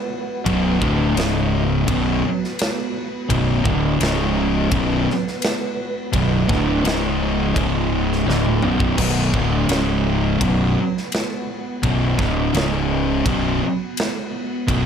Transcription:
0.00 1.15 B3 medium
0.00 1.15 F#4 medium
0.00 1.15 B4 loud
0.45 0.79 B0 medium
0.45 0.79 B1 loud
0.45 0.79 F#2 loud
0.45 0.80 B2 loud
0.45 kick loud
0.45 ride bell medium
0.80 1.15 D1 medium
0.80 1.15 D2 loud
0.80 1.15 A2 loud
0.80 1.15 D3 loud
0.80 kick loud
1.16 1.84 C#1 loud
1.16 1.87 C#2 medium
1.16 1.87 G#2 loud
1.16 1.87 C#3 medium
1.16 1.87 C#3 loud
1.16 1.87 G#3 medium
1.16 snare loud
1.16 ride bell medium
1.87 2.21 B0 medium
1.87 2.22 B1 loud
1.87 2.22 F#2 loud
1.87 2.23 B2 loud
1.87 3.99 B3 medium
1.87 3.98 F#4 medium
1.87 3.98 B4 medium
1.87 kick loud
1.87 ride bell medium
2.44 snare soft
2.59 snare loud
2.59 ride bell medium
3.29 3.63 B0 loud
3.29 3.64 B1 loud
3.29 3.64 F#2 loud
3.29 3.64 B2 loud
3.29 kick loud
3.29 ride bell medium
3.65 3.99 D1 loud
3.65 3.99 D2 loud
3.65 4.00 A2 loud
3.65 4.00 D3 loud
3.65 kick loud
4.00 4.68 C#1 medium
4.00 4.70 C#2 loud
4.00 4.70 G#2 loud
4.00 4.71 C#3 medium
4.00 4.70 C#3 loud
4.00 4.71 G#3 medium
4.00 snare loud
4.00 ride bell medium
4.71 5.05 B0 loud
4.71 5.06 B1 loud
4.71 5.06 F#2 loud
4.71 5.06 B2 loud
4.71 6.83 B3 medium
4.71 6.83 F#4 medium
4.71 kick loud
4.71 ride bell medium
5.10 snare soft
5.28 snare soft
5.42 snare loud
5.42 ride bell medium
6.12 6.47 B0 loud
6.12 6.48 B1 loud
6.12 6.48 F#2 loud
6.12 6.48 B2 loud
6.12 kick loud
6.12 ride bell medium
6.48 6.83 D1 medium
6.48 6.83 D2 loud
6.48 6.83 A2 loud
6.48 6.84 D3 loud
6.48 kick loud
6.48 snare soft
6.84 7.52 C#1 loud
6.84 7.54 C#2 loud
6.84 7.54 G#2 loud
6.84 7.54 C#3 loud
6.84 8.26 C#3 medium
6.84 8.26 G#3 medium
6.84 8.26 D#4 medium
6.84 ride bell medium
6.88 snare loud
7.55 8.24 C#1 loud
7.55 8.26 C#2 loud
7.55 8.26 G#2 loud
7.55 8.26 C#3 loud
7.55 kick loud
7.55 ride bell medium
8.12 snare soft
8.26 8.60 D1 loud
8.26 8.61 D2 loud
8.26 8.61 A2 loud
8.26 8.61 D3 loud
8.26 9.68 B3 medium
8.26 9.68 F#4 medium
8.26 9.68 B4 medium
8.26 snare medium
8.45 mid tom medium
8.62 8.96 B0 medium
8.62 8.97 B1 loud
8.62 8.97 F#2 loud
8.62 8.97 B2 loud
8.62 mid tom loud
8.80 kick loud
8.98 9.32 B0 medium
8.98 9.33 B1 medium
8.98 9.33 F#2 loud
8.98 9.33 B2 loud
8.98 kick loud
8.98 splash medium
8.98 crash loud
9.34 9.67 D1 loud
9.34 9.69 D2 medium
9.34 9.69 A2 loud
9.34 9.69 D3 loud
9.34 kick loud
9.69 10.37 C#1 loud
9.69 10.40 C#2 loud
9.69 10.40 G#2 loud
9.69 10.40 C#3 medium
9.69 10.40 C#3 loud
9.69 10.40 G#3 medium
9.69 10.40 D#4 medium
9.69 snare loud
9.69 ride bell medium
10.40 10.74 B0 loud
10.40 10.75 B1 loud
10.40 10.76 F#2 loud
10.40 10.76 B2 loud
10.40 12.53 B3 medium
10.40 12.53 F#4 medium
10.40 12.53 B4 medium
10.40 kick loud
10.40 ride bell medium
10.97 snare soft
11.12 snare loud
11.12 ride bell medium
11.83 12.17 B0 medium
11.83 12.18 B1 loud
11.83 12.18 F#2 loud
11.83 12.18 B2 loud
11.83 kick loud
11.83 ride bell medium
12.19 12.52 D1 medium
12.19 12.53 D2 loud
12.19 12.53 A2 loud
12.19 12.54 D3 loud
12.19 kick loud
12.19 snare soft
12.53 13.22 C#1 loud
12.53 13.25 C#2 loud
12.53 13.25 G#2 loud
12.53 13.25 C#3 medium
12.53 13.25 C#3 loud
12.53 13.25 G#3 medium
12.53 13.25 D#4 medium
12.53 snare loud
12.53 ride bell medium
13.26 13.59 B0 loud
13.26 13.60 B1 loud
13.26 13.61 F#2 loud
13.26 13.61 B2 loud
13.26 14.86 F#4 medium
13.26 kick loud
13.26 ride bell medium
13.97 snare loud
13.97 ride bell medium
14.68 14.86 B0 loud
14.68 14.86 B1 loud
14.68 14.86 F#2 loud
14.68 14.86 B2 loud
14.68 kick loud
14.68 ride bell medium

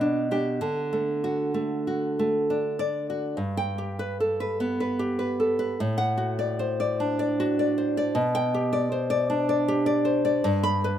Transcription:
0.00 0.59 B2 medium
0.00 0.30 D4 medium
0.31 0.59 D4 medium
0.31 0.59 G4 medium
0.61 3.34 D3 medium
0.93 1.53 A3 medium
1.24 1.86 F#4 medium
1.54 2.18 A3 medium
1.87 2.79 F#4 medium
2.19 3.38 A3 medium
2.50 3.38 D4 medium
2.79 3.09 D5 medium
3.10 3.38 F#4 medium
3.37 5.75 G2 medium
3.57 3.91 G5 loud
3.78 4.98 G4 medium
3.99 4.20 B4 medium
4.20 5.38 A4 medium
4.40 4.79 B4 medium
4.60 5.78 B3 medium
4.80 5.18 B4 medium
4.99 5.78 G4 medium
5.19 5.58 B4 medium
5.40 5.79 A4 medium
5.59 5.79 B4 medium
5.80 8.11 A2 medium
5.98 6.30 F#5 medium
6.17 7.37 F#4 medium
6.39 6.79 D5 medium
6.59 7.77 C5 medium
6.80 7.18 D5 medium
7.00 8.15 D4 medium
7.19 7.58 D5 medium
7.40 8.15 F#4 medium
7.59 7.96 D5 medium
7.78 8.15 C5 medium
7.97 8.15 D5 medium
8.15 10.40 B2 loud
8.35 8.65 G5 loud
8.54 9.67 G4 medium
8.73 9.09 D5 medium
8.92 10.04 C5 medium
9.10 9.48 D5 medium
9.30 10.44 D4 medium
9.49 9.85 D5 medium
9.68 10.44 G4 medium
9.86 10.24 D5 medium
10.05 10.43 C5 medium
10.25 10.44 D5 medium
10.44 10.99 G2 loud
10.63 10.94 B5 loud
10.84 10.99 B4 medium

